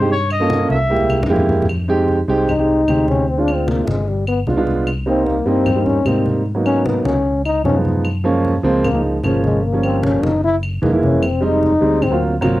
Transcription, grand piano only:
0.00 0.10 G#3 medium
0.00 0.10 C4 medium
0.00 0.11 D#4 medium
0.00 0.11 G4 medium
0.40 0.75 A#3 medium
0.40 0.75 C#4 medium
0.40 0.75 F4 medium
0.40 0.76 A4 medium
0.90 1.18 G#3 medium
0.90 1.18 A#3 medium
0.90 1.18 E4 medium
0.90 1.18 G4 medium
1.29 1.64 G#3 medium
1.29 1.64 A#3 medium
1.29 1.64 E4 medium
1.29 1.65 G4 loud
1.88 2.16 G#3 medium
1.88 2.17 C4 medium
1.88 2.17 D#4 medium
1.88 2.17 G4 loud
2.28 2.49 G#3 medium
2.28 2.49 C4 medium
2.28 2.50 D#4 medium
2.28 2.50 G4 loud
2.58 2.79 G#3 medium
2.58 2.79 C4 medium
2.58 2.80 D#4 medium
2.58 2.80 G4 medium
2.87 3.23 G#3 medium
2.87 3.23 C4 medium
2.87 3.23 D#4 medium
2.87 3.24 G4 medium
3.37 3.93 G#3 medium
3.37 3.93 C4 medium
3.37 3.94 D4 medium
3.37 3.94 F4 medium
4.47 4.54 G#3 medium
4.47 4.54 B3 medium
4.47 4.54 D4 medium
4.47 4.55 F4 medium
4.56 4.86 G#3 medium
4.56 4.87 B3 medium
4.56 4.87 D4 medium
4.56 4.87 F4 loud
5.06 5.34 G3 medium
5.06 5.34 A#3 medium
5.06 5.35 C4 medium
5.06 5.35 D#4 medium
5.46 5.67 G3 medium
5.46 5.67 A#3 medium
5.46 5.68 C4 medium
5.46 5.68 D#4 medium
5.75 5.97 G3 medium
5.75 5.97 A#3 medium
5.75 5.97 C4 medium
5.75 5.98 D#4 medium
6.05 6.41 G3 medium
6.05 6.41 A#3 medium
6.05 6.41 C4 medium
6.05 6.41 D#4 medium
6.55 7.11 F#3 medium
6.55 7.11 A#3 medium
6.55 7.12 B3 medium
6.55 7.12 D#4 medium
7.65 7.72 F3 medium
7.65 7.72 G#3 medium
7.65 7.72 B3 medium
7.65 7.73 D#4 medium
7.75 8.05 F3 medium
7.75 8.05 G#3 medium
7.75 8.05 B3 medium
7.75 8.05 D#4 medium
8.24 8.52 F3 medium
8.24 8.52 G#3 medium
8.24 8.53 A#3 medium
8.24 8.53 C#4 loud
8.63 8.85 F3 loud
8.63 8.85 G#3 medium
8.63 8.85 A#3 medium
8.63 8.85 C4 loud
8.93 9.15 F3 medium
8.93 9.15 G#3 medium
8.93 9.15 A#3 medium
8.93 9.15 D#4 medium
9.23 9.58 F3 medium
9.23 9.59 G#3 medium
9.23 9.59 A#3 medium
9.23 9.59 C#4 medium
9.72 10.29 F3 medium
9.72 10.29 G3 medium
9.72 10.29 A#3 medium
9.72 10.29 C#4 medium
10.82 10.89 E3 medium
10.82 10.90 G#3 medium
10.82 10.90 A#3 medium
10.82 10.90 D#4 loud
10.92 11.22 E3 medium
10.92 11.22 G#3 medium
10.92 11.23 A#3 medium
10.92 11.23 E4 medium
11.41 11.69 G3 medium
11.41 11.70 G#3 medium
11.41 11.70 C4 medium
11.41 11.70 D#4 loud
11.81 12.01 G3 medium
11.81 12.02 G#3 medium
11.81 12.02 C4 medium
11.81 12.02 D#4 medium
12.11 12.32 F#3 medium
12.11 12.33 A#3 medium
12.11 12.33 C4 medium
12.11 12.33 F4 medium
12.41 12.60 F#3 medium
12.41 12.60 A#3 medium
12.41 12.60 C4 medium
12.41 12.60 F4 loud

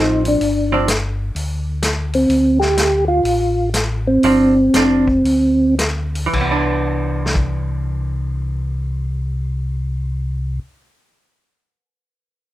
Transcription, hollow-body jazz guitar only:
0.00 0.38 F3 medium
0.00 0.38 C4 medium
0.72 0.87 F3 medium
0.72 0.87 C4 medium
0.72 0.87 D4 medium
4.24 4.53 F3 medium
4.24 4.54 C4 medium
4.24 4.54 D4 medium
4.75 5.05 F3 soft
4.75 5.05 C4 soft
4.75 5.06 D4 medium
6.26 10.57 E3 medium
6.41 10.71 B3 soft
6.51 10.81 D4 medium

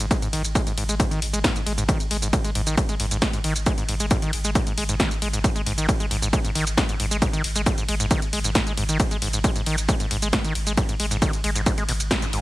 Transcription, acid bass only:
0.00 0.06 G#2 medium
0.11 0.17 G#3 medium
0.22 0.28 G#2 loud
0.33 0.42 D#3 loud
0.55 0.62 G#3 medium
0.67 0.73 G#2 medium
0.77 0.84 G#2 medium
0.89 0.95 G#3 medium
1.00 1.06 G#2 loud
1.11 1.20 D#3 loud
1.33 1.39 G#3 medium
1.44 1.50 G#2 medium
1.56 1.61 G#2 medium
1.66 1.73 G#3 medium
1.78 1.84 G#2 loud
1.88 1.98 D#3 loud
2.11 2.17 G#3 medium
2.22 2.28 G#2 medium
2.33 2.39 G#2 medium
2.44 2.50 G#3 medium
2.55 2.62 G#2 loud
2.67 2.76 D#3 loud
2.89 2.95 G#3 medium
3.00 3.06 G#2 medium
3.11 3.17 G#2 medium
3.22 3.28 G#3 medium
3.33 3.39 G#2 loud
3.44 3.54 D#3 loud
3.67 3.73 G#3 medium
3.78 3.84 G#2 medium
3.89 3.95 G#2 medium
4.00 4.06 G#3 medium
4.11 4.17 G#2 loud
4.22 4.31 D#3 loud
4.44 4.50 G#3 medium
4.55 4.62 G#2 medium
4.67 4.73 G#2 medium
4.78 4.84 G#3 medium
4.89 4.95 G#2 loud
5.00 5.09 D#3 loud
5.22 5.28 G#3 medium
5.33 5.39 G#2 medium
5.44 5.50 G#2 medium
5.56 5.62 G#3 medium
5.66 5.73 G#2 loud
5.78 5.87 D#3 loud
6.00 6.06 G#3 medium
6.11 6.17 G#2 medium
6.22 6.28 G#2 medium
6.33 6.39 G#3 medium
6.44 6.50 G#2 loud
6.55 6.65 D#3 loud
6.77 6.84 G#3 medium
6.89 6.95 G#2 medium
7.00 7.06 G#2 medium
7.11 7.17 G#3 medium
7.22 7.28 G#2 loud
7.33 7.42 D#3 loud
7.56 7.62 G#3 medium
7.66 7.73 G#2 medium
7.78 7.84 G#2 medium
7.89 7.95 G#3 medium
8.00 8.06 G#2 loud
8.11 8.20 D#3 loud
8.33 8.39 G#3 medium
8.44 8.50 G#2 medium
8.55 8.62 G#2 medium
8.67 8.73 G#3 medium
8.78 8.84 G#2 loud
8.89 8.98 D#3 loud
9.11 9.17 G#3 medium
9.22 9.28 G#2 medium
9.34 9.39 G#2 medium
9.44 9.51 G#3 medium
9.56 9.62 G#2 loud
9.67 9.76 D#3 loud
9.89 9.95 G#3 medium
10.00 10.06 G#2 medium
10.11 10.17 G#2 medium
10.22 10.28 G#3 medium
10.33 10.39 G#2 loud
10.44 10.53 D#3 loud
10.67 10.73 G#3 medium
10.77 10.84 G#2 medium
10.89 10.95 G#2 medium
11.00 11.06 G#3 medium
11.11 11.17 G#2 loud
11.22 11.31 D#3 loud
11.44 11.50 G#3 medium
11.55 11.61 G#2 medium
11.66 11.73 G#2 medium
11.78 11.84 G#3 medium
11.89 11.92 B2 medium
12.11 12.15 G#1 medium
12.22 12.26 G#2 loud
12.33 12.41 G#2 medium

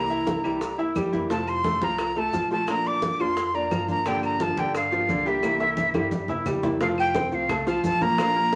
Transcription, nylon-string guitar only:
0.00 0.43 C3 medium
0.00 0.44 E3 medium
0.00 0.44 A#3 medium
0.00 0.44 C4 medium
0.00 0.43 E4 medium
0.44 0.60 E3 medium
0.44 0.60 A#3 medium
0.44 0.60 C4 medium
0.44 0.61 E4 medium
0.61 muted nylon-string guitar stroke medium
0.78 1.13 A#3 soft
0.78 1.12 C4 soft
0.78 1.11 E4 medium
1.13 1.30 E3 medium
1.13 1.30 A#3 soft
1.13 1.30 C4 medium
1.13 1.29 E4 medium
1.30 1.81 C3 medium
1.30 1.83 F3 medium
1.30 1.82 A3 medium
1.30 1.81 C4 medium
1.30 1.81 F4 medium
1.81 1.99 F3 medium
1.81 1.99 A3 medium
1.81 1.99 C4 medium
1.81 1.98 F4 medium
1.99 muted nylon-string guitar stroke medium
2.16 2.51 A3 soft
2.16 2.50 C4 soft
2.16 2.49 F4 soft
2.51 2.67 F3 medium
2.51 2.68 A3 medium
2.51 2.68 C4 medium
2.51 2.67 F4 medium
2.68 3.37 F3 medium
2.68 3.21 A#3 medium
2.68 3.20 D4 medium
2.68 3.19 F4 medium
3.19 3.36 A#3 medium
3.19 3.36 D4 soft
3.19 3.36 F4 medium
3.37 muted nylon-string guitar stroke soft
3.54 3.89 A#3 soft
3.54 3.88 D4 soft
3.54 3.87 F4 soft
3.88 4.05 A#3 medium
3.88 4.05 D4 medium
3.88 4.05 F4 medium
4.05 4.56 D3 medium
4.05 4.57 F3 medium
4.05 4.58 A#3 medium
4.05 4.57 D4 medium
4.05 4.57 G4 medium
4.57 4.73 F3 medium
4.57 4.73 A#3 medium
4.57 4.74 D4 medium
4.57 4.74 G4 medium
4.74 muted nylon-string guitar stroke medium
4.91 5.26 A#3 soft
4.91 5.25 D4 soft
4.91 5.24 G4 soft
5.25 5.43 F3 medium
5.25 5.42 A#3 medium
5.25 5.43 D4 medium
5.25 5.42 G4 medium
5.42 5.94 C3 medium
5.42 5.94 E3 medium
5.42 5.94 A#3 medium
5.42 5.94 C4 medium
5.42 5.93 E4 medium
5.94 6.11 E3 soft
5.94 6.11 A#3 medium
5.94 6.11 C4 medium
5.94 6.11 E4 medium
6.29 6.63 A#3 soft
6.29 6.63 C4 soft
6.29 6.62 E4 soft
6.63 6.80 E3 medium
6.63 6.81 A#3 medium
6.63 6.80 C4 medium
6.63 6.80 E4 medium
6.80 7.31 C3 medium
6.80 7.33 F3 medium
6.80 7.32 A3 medium
6.80 7.31 C4 medium
6.80 7.31 F4 medium
7.32 7.48 F3 medium
7.32 7.49 A3 medium
7.32 7.49 C4 medium
7.32 7.49 F4 medium
7.49 muted nylon-string guitar stroke medium
7.66 8.01 A3 soft
7.66 8.00 C4 soft
7.66 7.99 F4 soft
8.01 8.17 F3 medium
8.01 8.18 A3 medium
8.01 8.18 C4 medium
8.01 8.17 F4 medium
8.18 8.55 F3 medium
8.18 8.55 A#3 medium
8.18 8.55 D4 medium
8.18 8.55 F4 medium

